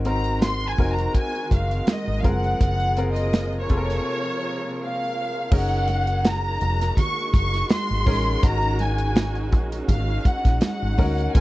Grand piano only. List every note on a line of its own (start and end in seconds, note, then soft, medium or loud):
0.00 0.05 C4 medium
0.00 0.06 D#4 medium
0.00 0.06 F#4 medium
0.00 0.06 A#4 medium
0.05 0.57 C4 medium
0.05 0.58 D#4 medium
0.05 0.58 F#4 medium
0.05 0.58 A#4 medium
0.78 1.80 C4 medium
0.78 1.81 D#4 medium
0.78 1.81 F#4 medium
0.78 1.81 A#4 medium
2.23 2.83 F3 medium
2.23 2.83 C4 medium
2.23 2.84 G#4 medium
2.23 2.84 A#4 medium
2.97 3.49 C4 medium
2.97 3.49 F4 medium
2.97 3.49 G#4 medium
2.97 3.49 A#4 medium
3.69 4.72 C3 medium
3.69 4.72 F4 medium
3.69 4.72 G#4 medium
3.69 3.77 A4 medium
3.77 4.76 A#4 medium
5.51 6.53 C#4 medium
5.51 6.54 D#4 medium
5.51 6.54 G#4 medium
5.51 6.54 A#4 medium
8.06 8.33 C#4 medium
8.06 8.33 D#4 medium
8.06 8.33 G#4 medium
8.06 8.33 A#4 medium
8.43 9.45 C#4 medium
8.43 9.45 D#4 medium
8.43 9.45 F#4 medium
8.43 9.46 A#4 medium
10.98 11.24 C#4 medium
10.98 11.25 D#4 medium
10.98 11.25 F#4 medium
10.98 11.25 A#4 medium
11.35 11.40 C4 medium
11.35 11.40 D#4 medium
11.35 11.40 F4 medium
11.35 11.40 A#4 medium